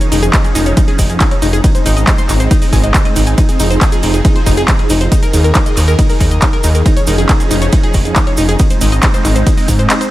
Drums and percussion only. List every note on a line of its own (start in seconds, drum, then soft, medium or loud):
0.01 closed hi-hat medium
0.01 cabasa soft
0.12 open hi-hat loud
0.12 cabasa loud
0.23 closed hi-hat medium
0.23 cabasa soft
0.33 kick loud
0.33 clap loud
0.33 closed hi-hat medium
0.33 ride medium
0.33 cabasa medium
0.44 closed hi-hat medium
0.44 cabasa soft
0.55 open hi-hat loud
0.55 cabasa loud
0.66 closed hi-hat medium
0.66 cabasa soft
0.77 kick loud
0.77 closed hi-hat medium
0.77 ride medium
0.77 cabasa medium
0.88 closed hi-hat medium
0.99 kick medium
0.99 open hi-hat loud
0.99 cabasa loud
1.10 closed hi-hat medium
1.10 cabasa soft
1.20 kick loud
1.20 clap loud
1.20 closed hi-hat medium
1.20 ride medium
1.20 cabasa medium
1.31 closed hi-hat medium
1.42 open hi-hat loud
1.42 cabasa loud
1.53 closed hi-hat medium
1.53 cabasa soft
1.64 kick loud
1.64 closed hi-hat medium
1.64 ride medium
1.64 cabasa medium
1.75 closed hi-hat medium
1.75 cabasa soft
1.86 open hi-hat loud
1.86 cabasa medium
1.97 closed hi-hat medium
1.97 cabasa soft
2.07 kick loud
2.07 clap loud
2.07 closed hi-hat medium
2.07 ride medium
2.07 cabasa medium
2.18 closed hi-hat medium
2.18 cabasa soft
2.29 clap soft
2.29 open hi-hat loud
2.29 cabasa loud
2.40 closed hi-hat soft
2.40 cabasa soft
2.51 kick loud
2.51 closed hi-hat medium
2.51 ride medium
2.51 cabasa medium
2.62 open hi-hat medium
2.62 cabasa soft
2.73 kick medium
2.73 open hi-hat loud
2.73 cabasa medium
2.83 closed hi-hat soft
2.83 cabasa soft
2.94 kick loud
2.94 clap loud
2.94 closed hi-hat medium
2.94 ride medium
2.94 cabasa medium
3.05 closed hi-hat medium
3.16 open hi-hat loud
3.16 cabasa loud
3.27 closed hi-hat medium
3.27 cabasa soft
3.38 kick loud
3.38 closed hi-hat medium
3.38 ride medium
3.38 cabasa medium
3.49 closed hi-hat medium
3.49 cabasa soft
3.60 open hi-hat loud
3.60 cabasa medium
3.70 closed hi-hat medium
3.70 cabasa soft
3.81 kick loud
3.81 clap loud
3.81 closed hi-hat medium
3.81 ride medium
3.81 cabasa soft
3.92 closed hi-hat medium
3.92 cabasa soft
4.03 open hi-hat loud
4.03 cabasa medium
4.14 closed hi-hat medium
4.14 cabasa soft
4.25 kick loud
4.25 closed hi-hat medium
4.25 ride medium
4.25 cabasa medium
4.36 closed hi-hat medium
4.46 kick medium
4.46 open hi-hat loud
4.46 cabasa medium
4.57 closed hi-hat medium
4.57 cabasa soft
4.68 kick loud
4.68 clap loud
4.68 closed hi-hat medium
4.68 ride medium
4.68 cabasa soft
4.79 closed hi-hat medium
4.90 open hi-hat loud
4.90 cabasa loud
5.01 closed hi-hat medium
5.01 cabasa soft
5.12 kick loud
5.12 closed hi-hat medium
5.12 ride medium
5.12 cabasa medium
5.23 closed hi-hat medium
5.23 cabasa soft
5.33 open hi-hat loud
5.33 cabasa medium
5.44 closed hi-hat medium
5.44 cabasa soft
5.54 kick loud
5.54 clap loud
5.54 closed hi-hat medium
5.54 ride medium
5.54 cabasa medium
5.66 closed hi-hat medium
5.66 cabasa soft
5.77 clap soft
5.77 open hi-hat loud
5.77 cabasa medium
5.88 closed hi-hat medium
5.88 cabasa soft
5.99 kick loud
5.99 closed hi-hat medium
5.99 ride medium
5.99 cabasa medium
6.09 open hi-hat medium
6.09 cabasa soft
6.20 kick medium
6.20 open hi-hat loud
6.20 cabasa medium
6.31 closed hi-hat medium
6.31 cabasa soft
6.42 kick loud
6.42 clap loud
6.42 closed hi-hat medium
6.42 ride medium
6.42 cabasa medium
6.53 closed hi-hat medium
6.63 open hi-hat loud
6.63 cabasa loud
6.75 closed hi-hat medium
6.75 cabasa soft
6.86 kick loud
6.86 closed hi-hat medium
6.86 ride medium
6.86 cabasa medium
6.97 closed hi-hat medium
6.97 cabasa soft
7.07 open hi-hat loud
7.07 cabasa medium
7.18 closed hi-hat medium
7.18 cabasa soft
7.29 kick loud
7.29 clap loud
7.29 closed hi-hat medium
7.29 ride medium
7.29 cabasa soft
7.40 closed hi-hat medium
7.40 cabasa soft
7.51 open hi-hat loud
7.51 cabasa medium
7.61 closed hi-hat medium
7.61 cabasa soft
7.72 kick loud
7.72 closed hi-hat medium
7.72 ride medium
7.72 cabasa medium
7.83 closed hi-hat medium
7.94 kick medium
7.94 open hi-hat loud
7.94 cabasa medium
8.05 closed hi-hat medium
8.05 cabasa soft
8.16 kick loud
8.16 clap loud
8.16 closed hi-hat medium
8.16 ride medium
8.16 cabasa medium
8.27 closed hi-hat medium
8.37 open hi-hat loud
8.37 cabasa loud
8.49 closed hi-hat medium
8.49 cabasa soft
8.59 kick loud
8.59 closed hi-hat medium
8.59 ride medium
8.59 cabasa medium
8.70 closed hi-hat medium
8.70 cabasa soft
8.81 open hi-hat loud
8.81 cabasa loud
8.92 closed hi-hat medium
8.92 cabasa soft
9.02 kick loud
9.02 clap loud
9.02 closed hi-hat medium
9.02 ride medium
9.02 cabasa medium
9.14 closed hi-hat medium
9.14 cabasa soft
9.25 clap soft
9.25 open hi-hat loud
9.25 cabasa medium
9.35 closed hi-hat medium
9.35 cabasa soft
9.47 kick loud
9.47 closed hi-hat medium
9.47 ride medium
9.47 cabasa medium
9.57 open hi-hat medium
9.57 cabasa soft
9.68 kick medium
9.68 open hi-hat loud
9.68 cabasa loud
9.79 closed hi-hat medium
9.79 cabasa soft
9.90 clap loud
9.90 closed hi-hat medium
9.90 ride medium
9.90 cabasa soft
10.01 closed hi-hat medium
10.01 cabasa soft